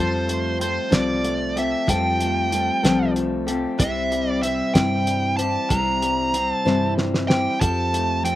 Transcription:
0.00 0.78 F2 medium
0.00 0.60 F3 medium
0.00 0.90 F3 medium
0.00 0.59 G3 medium
0.00 0.60 C4 medium
0.00 0.60 F4 medium
0.00 0.61 A4 medium
0.00 0.57 C5 medium
0.27 1.22 A3 soft
0.27 closed hi-hat medium
0.59 0.91 G3 soft
0.59 2.52 C4 medium
0.59 0.90 C4 soft
0.59 0.89 F4 soft
0.59 0.89 A4 medium
0.59 0.94 C5 medium
0.59 closed hi-hat medium
0.90 1.73 C2 medium
0.90 1.87 F3 medium
0.90 1.56 F3 soft
0.90 1.59 G3 medium
0.90 1.58 C4 medium
0.90 1.56 F4 medium
0.90 1.54 A4 medium
0.90 kick medium
0.90 snare medium
0.90 closed hi-hat medium
0.94 1.58 D5 medium
1.24 2.19 A3 medium
1.24 closed hi-hat medium
1.56 1.87 C4 soft
1.56 1.87 F4 soft
1.56 3.19 G4 medium
1.56 1.88 A4 soft
1.56 1.90 E5 medium
1.56 closed hi-hat medium
1.87 2.69 F2 medium
1.87 2.51 F3 medium
1.87 2.83 F3 medium
1.87 2.49 G3 medium
1.87 2.51 C4 medium
1.87 2.51 F4 medium
1.87 2.52 A4 medium
1.87 3.13 G5 medium
1.87 kick medium
1.87 closed hi-hat medium
2.20 3.15 A3 medium
2.20 closed hi-hat medium
2.50 2.83 G3 soft
2.50 2.83 C4 soft
2.50 4.43 C4 medium
2.50 2.82 F4 medium
2.50 2.82 A4 medium
2.50 closed hi-hat medium
2.83 3.64 C2 medium
2.83 3.80 F3 medium
2.83 3.48 F3 medium
2.83 3.50 G3 medium
2.83 3.50 C4 medium
2.83 3.47 F4 medium
2.83 3.45 A4 medium
2.83 snare medium
2.83 closed hi-hat medium
3.16 3.80 A3 medium
3.16 closed hi-hat medium
3.47 3.78 C4 soft
3.47 3.79 F4 soft
3.47 5.39 G4 medium
3.47 3.79 A4 medium
3.47 closed hi-hat medium
3.78 4.60 C2 medium
3.78 4.42 C3 medium
3.78 5.39 C3 medium
3.78 4.41 G3 medium
3.78 4.43 C4 medium
3.78 4.43 E4 medium
3.78 4.45 C5 medium
3.78 4.29 E5 medium
3.78 kick loud
3.78 closed hi-hat medium
4.12 5.07 G3 medium
4.12 closed hi-hat medium
4.29 4.42 D5 medium
4.42 4.74 G3 medium
4.42 4.74 C4 soft
4.42 6.35 C4 medium
4.42 4.74 E4 medium
4.42 4.72 C5 soft
4.42 4.76 E5 medium
4.42 closed hi-hat medium
4.74 5.56 G2 medium
4.74 5.39 C3 soft
4.74 6.35 E3 medium
4.74 5.70 G3 medium
4.74 5.40 C4 medium
4.74 5.39 E4 medium
4.74 5.38 C5 medium
4.74 5.36 G5 medium
4.74 kick medium
4.74 snare loud
4.74 closed hi-hat medium
5.07 6.02 G3 medium
5.07 closed hi-hat medium
5.37 5.69 C4 soft
5.37 5.69 E4 soft
5.37 7.30 G4 medium
5.37 5.70 C5 soft
5.37 5.71 A5 medium
5.37 closed hi-hat medium
5.69 6.51 C2 medium
5.69 6.33 C3 medium
5.69 7.30 C3 medium
5.69 6.32 G3 medium
5.69 6.33 C4 medium
5.69 6.33 E4 medium
5.69 6.35 C5 medium
5.69 6.50 A#5 loud
5.69 kick medium
5.69 closed hi-hat medium
6.02 6.98 G3 medium
6.02 closed hi-hat medium
6.32 6.65 G3 soft
6.32 6.65 C4 soft
6.32 8.24 C4 medium
6.32 6.64 E4 medium
6.32 6.64 C5 medium
6.32 closed hi-hat medium
6.50 6.93 A5 loud
6.65 7.46 G2 medium
6.65 7.31 C3 medium
6.65 7.62 E3 medium
6.65 7.60 G3 medium
6.65 7.31 C4 medium
6.65 7.29 E4 medium
6.65 7.27 C5 medium
6.65 snare medium
6.98 7.65 G3 medium
6.98 snare medium
7.14 snare medium
7.28 7.60 C4 soft
7.28 7.61 E4 soft
7.28 7.65 G4 medium
7.28 7.61 C5 medium
7.28 7.60 G5 medium
7.28 snare medium
7.60 8.35 F2 medium
7.60 8.22 F3 medium
7.60 8.35 F3 medium
7.60 8.23 C4 medium
7.60 8.23 G4 medium
7.60 8.25 A4 medium
7.60 8.24 A5 loud
7.60 kick loud
7.60 closed hi-hat medium
7.93 8.35 A3 medium
7.93 closed hi-hat medium
8.23 8.35 F3 soft
8.23 8.35 C4 medium
8.23 8.35 C4 soft
8.23 8.35 G4 soft
8.23 8.35 A4 medium
8.23 8.35 G5 medium
8.23 closed hi-hat medium

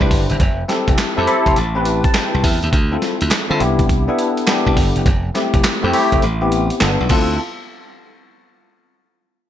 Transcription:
0.00 0.09 C2 medium
0.00 0.42 D4 loud
0.00 0.42 E4 medium
0.00 0.42 G4 medium
0.00 0.42 B4 loud
0.00 0.28 C5 medium
0.00 kick loud
0.11 0.26 G1 medium
0.11 kick medium
0.11 open hi-hat medium
0.30 0.38 F#1 medium
0.30 0.58 E5 medium
0.30 closed hi-hat medium
0.40 0.63 F1 loud
0.40 kick loud
0.40 closed hi-hat medium
0.69 1.00 C4 loud
0.69 1.00 E4 medium
0.69 1.00 G4 medium
0.69 1.01 A4 loud
0.69 snare medium
0.69 closed hi-hat medium
0.88 0.96 F1 medium
0.88 kick loud
0.88 closed hi-hat medium
0.98 snare loud
0.98 clap medium
0.98 closed hi-hat medium
1.16 1.26 F2 medium
1.16 1.24 C4 medium
1.16 1.24 E4 medium
1.16 1.24 G4 medium
1.16 1.25 A4 loud
1.26 1.56 C4 medium
1.26 1.56 E4 medium
1.26 1.56 G4 medium
1.26 1.57 A4 loud
1.26 1.45 B5 medium
1.26 closed hi-hat medium
1.46 1.55 F1 medium
1.46 1.56 C6 medium
1.46 kick medium
1.46 closed hi-hat medium
1.56 2.03 A1 loud
1.56 2.01 A5 medium
1.56 closed hi-hat medium
1.75 2.56 C4 medium
1.75 2.56 E4 medium
1.75 2.56 G4 medium
1.75 2.57 B4 loud
1.85 closed hi-hat medium
2.04 2.14 A5 medium
2.04 kick loud
2.04 closed hi-hat medium
2.14 2.42 G5 medium
2.14 snare loud
2.14 clap medium
2.14 closed hi-hat medium
2.34 2.42 C2 medium
2.44 2.59 E2 medium
2.44 2.71 E5 medium
2.44 kick loud
2.44 open hi-hat medium
2.63 2.71 D#2 medium
2.63 closed hi-hat medium
2.73 2.96 D2 loud
2.73 kick loud
2.73 closed hi-hat medium
2.91 3.29 C4 medium
2.91 3.29 E4 medium
2.91 3.29 F4 medium
2.91 3.30 A4 medium
3.02 snare medium
3.02 closed hi-hat medium
3.21 3.29 D2 medium
3.21 closed hi-hat medium
3.31 muted slap bass stroke soft
3.31 snare loud
3.31 clap loud
3.31 clap medium
3.31 closed hi-hat medium
3.49 3.62 D3 loud
3.49 3.60 C4 medium
3.49 3.59 E4 medium
3.49 3.60 F4 medium
3.49 3.61 A4 loud
3.59 4.07 C2 medium
3.59 3.97 B3 medium
3.59 3.97 D4 medium
3.59 3.97 E4 medium
3.59 3.97 G4 loud
3.59 closed hi-hat medium
3.79 kick loud
3.79 closed hi-hat medium
3.89 kick medium
3.89 closed hi-hat medium
4.08 4.38 B3 medium
4.08 4.39 D4 medium
4.08 4.39 E4 medium
4.08 4.39 A4 loud
4.19 closed hi-hat medium
4.37 closed hi-hat medium
4.47 5.06 B3 medium
4.47 5.06 D4 medium
4.47 5.06 E4 medium
4.47 5.06 G4 medium
4.47 snare loud
4.47 clap medium
4.47 closed hi-hat medium
4.67 4.75 C2 medium
4.67 kick medium
4.77 4.92 G1 medium
4.77 kick medium
4.77 open hi-hat medium
4.96 5.04 F#1 medium
4.96 closed hi-hat medium
5.06 5.29 F1 loud
5.06 kick loud
5.06 closed hi-hat medium
5.34 5.66 A3 medium
5.34 5.66 C4 medium
5.34 5.67 E4 medium
5.34 5.67 G4 loud
5.34 snare medium
5.34 closed hi-hat medium
5.54 5.62 F1 medium
5.54 kick medium
5.54 closed hi-hat medium
5.64 snare loud
5.64 clap medium
5.64 closed hi-hat medium
5.83 5.92 F2 loud
5.83 5.90 A3 medium
5.83 5.90 C4 medium
5.83 5.91 E4 medium
5.83 5.91 G4 loud
5.93 6.22 A3 medium
5.93 6.22 C4 medium
5.93 6.23 E4 medium
5.93 6.23 G4 loud
5.93 open hi-hat medium
6.12 6.21 F1 medium
6.12 kick medium
6.12 closed hi-hat medium
6.22 6.69 A1 loud
6.22 closed hi-hat medium
6.41 6.79 B3 medium
6.41 6.81 C4 medium
6.41 6.81 E4 medium
6.41 6.81 G4 loud
6.52 closed hi-hat medium
6.70 closed hi-hat medium
6.81 6.96 G1 medium
6.81 7.10 B3 medium
6.81 7.10 D4 medium
6.81 7.09 F4 medium
6.81 7.09 A4 medium
6.81 snare loud
6.81 clap medium
6.81 closed hi-hat medium
7.00 7.08 B1 medium
7.10 7.37 D2 medium
7.10 7.37 C4 medium
7.10 7.37 E4 medium
7.10 7.37 F4 medium
7.10 7.37 A4 medium
7.10 kick loud
7.10 clap medium
7.10 crash medium

